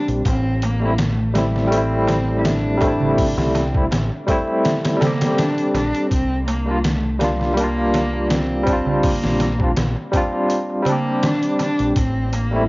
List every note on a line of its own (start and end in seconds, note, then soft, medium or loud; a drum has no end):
0.00 0.21 G3 medium
0.00 0.22 C4 medium
0.00 0.24 D4 medium
0.00 0.26 G4 medium
0.08 0.23 A#1 medium
0.08 closed hi-hat soft
0.08 darbuka tek soft
0.25 3.34 A1 medium
0.25 0.65 C4 loud
0.25 kick loud
0.25 closed hi-hat medium
0.25 darbuka tek medium
0.62 1.03 A#3 medium
0.62 closed hi-hat medium
0.62 darbuka tek medium
0.80 0.90 G3 medium
0.80 0.91 A3 medium
0.80 0.92 C4 medium
0.80 darbuka tek soft
0.85 0.92 E4 medium
0.98 1.38 A3 medium
0.98 snare loud
0.98 closed hi-hat medium
0.98 darbuka tek soft
1.19 darbuka tek soft
1.33 1.66 G3 medium
1.33 1.75 G3 medium
1.33 1.68 A3 medium
1.33 1.68 C4 medium
1.33 snare soft
1.33 closed hi-hat medium
1.33 darbuka tek medium
1.38 1.69 E4 medium
1.56 snare soft
1.56 darbuka tek soft
1.67 2.75 G3 medium
1.67 2.77 A3 medium
1.72 2.40 C4 loud
1.72 2.78 C4 medium
1.72 closed hi-hat medium
1.72 darbuka tek medium
1.77 2.80 E4 medium
1.92 darbuka tek soft
2.07 snare soft
2.07 closed hi-hat medium
2.07 darbuka tek medium
2.28 darbuka tek soft
2.39 2.48 E4 medium
2.44 3.21 D4 loud
2.44 snare loud
2.44 closed hi-hat medium
2.44 darbuka tek soft
2.78 3.68 G3 medium
2.78 3.69 A3 medium
2.78 kick medium
2.78 closed hi-hat medium
2.78 darbuka tek medium
2.84 3.71 C4 medium
2.84 3.72 E4 medium
3.00 darbuka tek soft
3.00 darbuka dum medium
3.17 3.27 C4 medium
3.17 kick loud
3.17 open hi-hat medium
3.17 darbuka tek soft
3.25 3.37 D4 medium
3.35 3.88 C2 medium
3.35 3.92 C4 medium
3.35 snare soft
3.55 snare soft
3.55 closed hi-hat medium
3.55 darbuka tek medium
3.72 3.82 G3 medium
3.72 3.83 A3 medium
3.72 3.84 C4 medium
3.72 kick medium
3.72 darbuka tek soft
3.77 3.85 E4 medium
3.91 4.09 A1 medium
3.91 snare loud
3.91 closed hi-hat medium
3.91 darbuka tek soft
4.10 darbuka tek soft
4.27 4.95 G3 medium
4.27 4.97 A3 medium
4.27 4.98 C4 medium
4.27 kick medium
4.27 closed hi-hat medium
4.27 darbuka tek medium
4.31 4.99 E4 loud
4.48 darbuka tek soft
4.64 snare loud
4.64 closed hi-hat medium
4.64 darbuka tek soft
4.84 snare medium
4.84 closed hi-hat medium
4.84 darbuka tek soft
4.96 6.06 G3 medium
4.96 6.08 A4 medium
5.01 5.39 A#3 loud
5.01 6.10 C4 medium
5.01 snare loud
5.01 closed hi-hat medium
5.01 darbuka tek medium
5.01 darbuka dum medium
5.07 6.11 G4 medium
5.21 snare medium
5.21 closed hi-hat medium
5.21 darbuka tek soft
5.37 5.74 D4 loud
5.37 snare loud
5.37 closed hi-hat medium
5.37 darbuka tek soft
5.58 closed hi-hat soft
5.74 5.91 A#1 medium
5.74 6.08 D4 loud
5.74 snare soft
5.74 closed hi-hat medium
5.74 darbuka tek loud
5.94 closed hi-hat soft
5.94 darbuka tek soft
6.10 9.01 C2 medium
6.10 6.44 C4 loud
6.10 kick loud
6.10 closed hi-hat medium
6.10 darbuka tek soft
6.47 6.85 A#3 medium
6.47 closed hi-hat medium
6.47 darbuka tek medium
6.65 6.75 G3 medium
6.65 6.76 A#3 medium
6.65 6.77 D4 medium
6.65 darbuka tek soft
6.71 6.78 F4 medium
6.83 7.21 A3 medium
6.83 snare loud
6.83 closed hi-hat medium
6.83 darbuka tek medium
7.03 darbuka tek soft
7.19 7.52 G3 medium
7.19 7.59 G3 medium
7.19 7.53 A#3 medium
7.19 7.54 D4 medium
7.19 snare soft
7.19 closed hi-hat medium
7.19 darbuka tek medium
7.24 7.55 F4 medium
7.40 snare soft
7.40 darbuka tek soft
7.54 8.61 G3 medium
7.54 8.63 A#3 medium
7.54 8.31 A#3 loud
7.54 closed hi-hat medium
7.54 darbuka tek medium
7.60 8.64 D4 medium
7.60 8.66 F4 medium
7.77 darbuka tek soft
7.94 snare soft
7.94 closed hi-hat medium
7.94 darbuka tek medium
8.13 darbuka tek soft
8.30 9.05 C4 loud
8.30 snare loud
8.30 closed hi-hat medium
8.30 darbuka tek soft
8.63 9.53 G3 medium
8.63 9.54 C4 medium
8.67 9.56 D4 medium
8.67 kick medium
8.67 closed hi-hat medium
8.67 darbuka tek medium
8.73 9.58 F4 medium
8.86 darbuka tek soft
8.86 darbuka dum medium
9.03 9.76 A#3 medium
9.03 kick loud
9.03 open hi-hat medium
9.03 darbuka tek soft
9.24 9.74 A#1 medium
9.24 snare medium
9.40 snare soft
9.40 closed hi-hat medium
9.40 darbuka tek medium
9.59 9.68 G3 medium
9.59 9.69 C4 medium
9.59 9.70 D4 medium
9.59 kick medium
9.59 darbuka tek soft
9.64 9.71 F4 medium
9.76 9.94 A#1 medium
9.76 snare loud
9.76 closed hi-hat medium
9.76 darbuka tek medium
9.96 darbuka tek soft
10.12 10.81 G3 medium
10.12 10.82 C4 medium
10.12 10.83 D4 medium
10.12 kick medium
10.12 closed hi-hat medium
10.12 darbuka tek medium
10.17 10.84 F4 loud
10.33 darbuka tek soft
10.49 closed hi-hat medium
10.49 darbuka tek soft
10.70 darbuka tek soft
10.83 11.92 G3 medium
10.83 11.94 C4 medium
10.83 closed hi-hat medium
10.83 darbuka tek medium
10.83 darbuka dum medium
10.88 11.27 A#3 loud
10.88 11.95 D4 medium
10.88 11.97 G4 medium
11.06 darbuka tek soft
11.23 11.61 D4 loud
11.23 snare loud
11.23 closed hi-hat medium
11.23 darbuka tek soft
11.43 closed hi-hat soft
11.59 11.94 D4 loud
11.59 snare soft
11.59 closed hi-hat medium
11.59 darbuka tek medium
11.79 11.94 A#1 medium
11.79 closed hi-hat soft
11.79 darbuka tek soft
11.96 12.69 A1 medium
11.96 12.35 C4 loud
11.96 kick loud
11.96 closed hi-hat medium
11.96 darbuka tek medium
12.33 12.69 A#3 loud
12.33 closed hi-hat medium
12.33 darbuka tek medium
12.51 12.61 G3 medium
12.51 12.62 A3 medium
12.51 12.62 C4 medium
12.51 darbuka tek soft
12.56 12.63 E4 medium